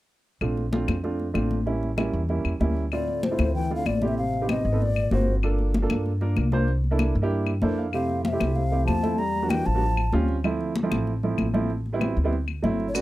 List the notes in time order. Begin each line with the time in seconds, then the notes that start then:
0.41 A#1 A3 C4 D4 F4, high conga, claves
0.57 high conga
0.72 A3 C4 D4 F4, high conga
0.88 F2, high conga, claves
1.03 A3 C4 D4 F4, high conga
1.19 high conga
1.34 A1 A3 C4 D4 F4, high conga, claves
1.51 high conga
1.66 G3 A#3 C#4 E4, high conga
1.83 high conga
1.97 G3 A#3 C#4 E4, high conga, claves
2.13 E2, high conga
2.29 G3 A#3 C#4 E4, high conga
2.45 E2, high conga, claves
2.60 D2 G3 A#3 C#4 E4, high conga
2.77 high conga
2.92 A2 A3 C4 E4 F4 D5, high conga, claves
3.08 high conga
3.23 A2 C5, high conga
3.31 A3 C4 E4 F4
3.39 D2, high conga, claves
3.55 E3 G5, high conga
3.70 A3 C4 E4 F4, high conga
3.76 D3 F5
3.86 A1 A2 D5, high conga, claves
4.02 A3 C4 E4 G4, high conga
4.07 C3 E5
4.18 C3 F5, high conga
4.33 high conga
4.41 B3 C4 D#4 G4
4.49 C3 D#5, high conga, claves
4.65 G#1, high conga
4.72 B3 C4 D#4 A4
4.81 A#2 D5, high conga
4.96 high conga, claves
5.11 G1 G#2 A#3 C4 F4 F#4 C5, high conga
5.28 high conga
5.43 A#3 D4 F4 A4, high conga, claves
5.58 high conga
5.74 high conga
5.82 A#3 D4 F4 A4
5.90 G2, high conga, claves
6.06 high conga
6.21 A#3 D4 F4 A#4, high conga
6.37 C2, high conga, claves
6.52 A#3 D4 F4 C5, high conga
6.68 high conga
6.84 high conga
6.91 A#3 D4 E4 A4
6.99 high conga, claves
7.15 G2, high conga
7.22 A#3 D4 E4 G4
7.31 high conga
7.46 high conga, claves
7.62 F2 A#3 D4 E4 A4 C5, high conga
7.78 F5, high conga
7.93 C3 A3 C4 E4 G4 F5, high conga, claves
8.09 high conga
8.23 C3 F5, high conga
8.28 A3 E5
8.33 C4 E4 G4
8.40 C2, high conga, claves
8.54 C3 F5, high conga
8.72 A3 C4 E4 G4, high conga
8.84 E2 F3 A5, high conga, claves
9.03 A3 C4 E4 A4, high conga
9.17 G3 A#5, high conga
9.35 high conga
9.42 G3 A#3 D4 F#4
9.48 E3 G5, high conga, claves
9.64 A1 F3 A5, high conga
9.74 G3 A#3 D4 F#4
9.82 high conga
9.97 high conga, claves
10.12 D2 G3 C4 C#4 F4, high conga
10.28 high conga
10.44 F3 A3 C4 E4, high conga, claves
10.61 high conga
10.76 high conga
10.83 F3 A3 C4 E4
10.91 A1, high conga, claves
11.07 high conga
11.23 F3 A3 C4 E4, high conga
11.38 A1, high conga, claves
11.54 F3 A3 C4 E4, high conga
11.70 high conga
11.86 high conga
11.93 G3 B3 C4 E4
12.01 high conga, claves
12.17 D2, high conga
12.24 G3 B3 C4 E4
12.33 high conga
12.48 high conga, claves
12.63 G1 F#3 A3 C4 E4, high conga
12.80 high conga
12.88 A2 C#5
12.94 B2 A3 B3 C#4 F#4 D5, high conga, claves, maracas